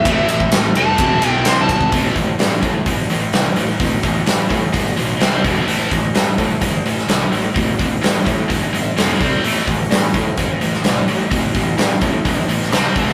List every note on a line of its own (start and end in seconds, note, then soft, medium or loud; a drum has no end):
0.00 0.50 E5 loud
0.05 0.25 A1 loud
0.05 0.28 A2 medium
0.05 0.28 E3 medium
0.05 0.28 A3 medium
0.05 kick loud
0.05 ride loud
0.29 0.48 A1 medium
0.29 0.50 A2 medium
0.29 0.50 E3 medium
0.29 ride medium
0.40 kick medium
0.52 0.72 A1 medium
0.52 0.74 A2 medium
0.52 0.74 E3 medium
0.52 snare loud
0.52 ride loud
0.75 0.95 F1 medium
0.75 0.98 A2 medium
0.75 0.98 E3 loud
0.75 0.99 A3 loud
0.75 1.29 A5 loud
0.75 ride medium
0.98 1.18 E1 medium
0.98 1.21 E2 medium
0.98 1.22 B2 loud
0.98 1.22 E3 loud
0.98 kick loud
0.98 ride loud
1.22 1.42 B1 loud
1.22 1.44 E2 loud
1.22 1.44 B2 medium
1.22 1.45 E3 loud
1.22 ride medium
1.29 1.45 G5 loud
1.44 1.66 C2 loud
1.44 1.67 C3 medium
1.44 1.68 G3 loud
1.44 1.68 C4 loud
1.44 1.59 C6 loud
1.44 snare loud
1.44 ride loud
1.61 1.71 A5 loud
1.69 1.89 G#1 medium
1.69 1.90 C3 medium
1.69 1.91 G3 medium
1.69 1.93 A5 loud
1.69 kick medium
1.69 ride medium
1.81 kick medium
1.92 2.08 A1 medium
1.92 2.14 A2 medium
1.92 2.15 E3 medium
1.92 2.15 A3 medium
1.92 kick loud
1.92 open hi-hat medium
2.15 2.31 A1 medium
2.15 2.37 A2 medium
2.15 2.37 E3 medium
2.15 kick medium
2.15 open hi-hat medium
2.39 2.55 G2 medium
2.39 2.60 A2 medium
2.39 2.61 E3 medium
2.39 snare loud
2.39 open hi-hat medium
2.61 2.83 A2 medium
2.61 2.78 A2 medium
2.61 2.84 E3 medium
2.61 kick medium
2.61 open hi-hat medium
2.86 3.02 G1 medium
2.86 3.08 A2 medium
2.86 3.08 E3 medium
2.86 kick medium
2.86 open hi-hat medium
3.10 3.25 A1 medium
3.10 3.31 A2 medium
3.10 3.31 E3 medium
3.10 open hi-hat soft
3.33 3.49 C2 medium
3.33 3.55 A2 medium
3.33 3.55 E3 medium
3.33 snare loud
3.33 open hi-hat medium
3.56 3.72 A1 medium
3.56 3.78 A2 medium
3.56 3.78 E3 medium
3.56 open hi-hat medium
3.80 3.96 A1 medium
3.80 4.01 A2 medium
3.80 4.02 E3 medium
3.80 kick loud
3.80 open hi-hat medium
4.03 4.19 A1 medium
4.03 4.25 A2 medium
4.03 4.25 E3 medium
4.03 kick medium
4.03 open hi-hat medium
4.26 4.43 G2 medium
4.26 4.48 A2 medium
4.26 4.48 E3 medium
4.26 snare loud
4.26 open hi-hat medium
4.49 4.71 A2 medium
4.49 4.66 A2 medium
4.49 4.71 E3 medium
4.49 kick medium
4.49 open hi-hat medium
4.73 4.90 G1 medium
4.73 4.95 A2 medium
4.73 4.95 E3 medium
4.73 kick medium
4.73 open hi-hat medium
4.97 5.13 B1 medium
4.97 5.19 A2 medium
4.97 5.19 E3 medium
4.97 open hi-hat medium
5.20 5.46 C2 medium
5.20 5.43 C3 medium
5.20 5.43 G3 loud
5.20 5.44 C4 loud
5.20 snare loud
5.20 open hi-hat medium
5.44 5.60 E1 medium
5.44 5.67 E2 medium
5.44 5.67 B2 medium
5.44 5.66 E3 medium
5.44 kick medium
5.44 open hi-hat medium
5.67 5.83 A1 loud
5.67 5.90 A2 medium
5.67 5.90 E3 medium
5.67 5.90 A3 medium
5.67 open hi-hat medium
5.91 6.07 A1 medium
5.91 6.13 A2 medium
5.91 6.13 E3 medium
5.91 kick medium
5.91 open hi-hat medium
6.15 6.30 G2 medium
6.15 6.36 A2 medium
6.15 6.36 E3 medium
6.15 snare loud
6.15 open hi-hat medium
6.38 6.60 A2 medium
6.38 6.54 A2 medium
6.38 6.60 E3 medium
6.38 kick medium
6.38 open hi-hat medium
6.61 6.77 G1 medium
6.61 6.83 A2 medium
6.61 6.83 E3 medium
6.61 kick medium
6.61 open hi-hat medium
6.85 7.01 A1 medium
6.85 7.07 A2 medium
6.85 7.07 E3 medium
6.85 open hi-hat medium
6.98 snare soft
7.09 7.25 C2 medium
7.09 7.30 A2 medium
7.09 7.30 E3 medium
7.09 snare loud
7.09 open hi-hat medium
7.32 7.48 A1 medium
7.32 7.53 A2 medium
7.32 7.53 E3 medium
7.32 open hi-hat medium
7.54 7.71 A1 medium
7.54 7.76 A2 medium
7.54 7.77 E3 medium
7.54 kick loud
7.54 open hi-hat medium
7.79 7.95 A1 medium
7.79 8.00 A2 medium
7.79 8.01 E3 medium
7.79 kick medium
7.79 open hi-hat medium
8.02 8.19 G2 medium
8.02 8.24 A2 medium
8.02 8.24 E3 medium
8.02 snare loud
8.02 open hi-hat medium
8.25 8.47 A2 medium
8.25 8.42 A2 medium
8.25 8.47 E3 medium
8.25 kick medium
8.25 open hi-hat medium
8.48 8.66 G1 medium
8.48 8.70 A2 medium
8.48 8.71 E3 medium
8.48 kick medium
8.48 open hi-hat medium
8.73 8.89 G1 medium
8.73 8.94 A2 medium
8.73 8.95 E3 medium
8.73 open hi-hat medium
8.96 9.12 F1 medium
8.96 9.19 F2 medium
8.96 9.19 C3 medium
8.96 9.20 F3 medium
8.96 snare loud
8.96 open hi-hat medium
9.21 9.36 C2 medium
9.21 9.43 C3 medium
9.21 9.43 G3 medium
9.21 9.43 C4 loud
9.21 kick loud
9.21 open hi-hat medium
9.43 9.60 A1 medium
9.43 9.65 A2 medium
9.43 9.66 E3 medium
9.43 9.66 A3 loud
9.43 open hi-hat medium
9.67 9.83 A1 medium
9.67 9.88 A2 medium
9.67 9.89 E3 medium
9.67 kick medium
9.67 open hi-hat medium
9.90 10.06 G2 medium
9.90 10.12 A2 medium
9.90 10.12 E3 medium
9.90 snare loud
9.90 open hi-hat medium
10.14 10.30 A2 medium
10.14 10.36 A2 medium
10.14 10.36 E3 medium
10.14 kick medium
10.14 open hi-hat medium
10.37 10.53 G1 medium
10.37 10.59 A2 medium
10.37 10.59 E3 medium
10.37 kick medium
10.37 open hi-hat medium
10.61 10.76 A1 medium
10.61 10.83 A2 medium
10.61 10.83 E3 medium
10.61 open hi-hat soft
10.74 snare soft
10.84 11.00 C2 medium
10.84 11.06 A2 medium
10.84 11.06 E3 medium
10.84 snare loud
10.84 open hi-hat medium
11.08 11.24 A1 medium
11.08 11.30 A2 medium
11.08 11.30 E3 medium
11.08 open hi-hat medium
11.31 11.47 A1 medium
11.31 11.53 A2 medium
11.31 11.53 E3 medium
11.31 kick loud
11.31 open hi-hat medium
11.55 11.71 A1 medium
11.55 11.76 A2 medium
11.55 11.77 E3 medium
11.55 kick medium
11.55 open hi-hat medium
11.78 11.94 G2 medium
11.78 12.00 A2 medium
11.78 12.00 E3 medium
11.78 snare loud
11.78 open hi-hat medium
12.01 12.23 A2 medium
12.01 12.17 A2 medium
12.01 12.24 E3 medium
12.01 kick medium
12.01 open hi-hat medium
12.25 12.41 G1 medium
12.25 12.47 A2 medium
12.25 12.47 E3 medium
12.25 kick medium
12.25 open hi-hat medium
12.48 12.72 A1 medium
12.48 12.70 A2 medium
12.48 12.70 E3 medium
12.48 open hi-hat medium
12.62 snare soft
12.72 12.88 C2 medium
12.72 12.95 C3 medium
12.72 12.95 G3 medium
12.72 12.96 C4 medium
12.72 snare loud
12.72 open hi-hat medium
12.96 13.12 E1 medium
12.96 13.13 E2 medium
12.96 13.13 B2 medium
12.96 13.13 E3 loud
12.96 kick loud
12.96 open hi-hat medium
13.09 snare soft